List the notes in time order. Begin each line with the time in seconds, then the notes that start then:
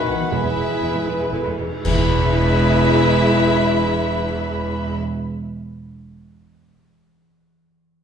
Already playing: B2 D#3 B3 D#4 F#4 B4 B5
0.07 B1 B2 B3 F#4 F#5
0.14 E3
0.18 B3
0.23 E4
0.28 E1 E2 E3 E4 G#4 B4 B5
0.32 G#3 E4 G#4 E5
0.44 E2 G#3
0.56 E1 E2 G#3 B3
0.68 E2 G#3
0.80 E1 E2 G#3 E4
0.93 E2 G#3
1.05 E1 E2 G#3 B3 B4
1.19 E2 G#3
1.31 E1 E2 G#3 E4 A4
1.45 E2 G#3
1.58 E1 E2 G#3 B3 G#4
1.84 E1 E2 E3 G#3 E4 G#4 B4 E5 B5, concert bass drum, crash
1.93 B3
2.00 E4
2.07 G#4
2.14 E5